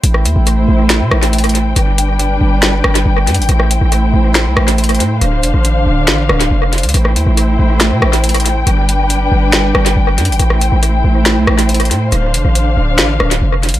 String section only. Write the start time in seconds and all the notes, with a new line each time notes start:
0.04 A3 E4 C5 G5
1.76 G3 D4 B4
3.49 A3 E4 C5
5.22 D3 D4 F5
6.94 A3 E4 C5 G5
8.67 G3 D4 B4
10.40 A3 E4 C5
12.12 D3 D4 F5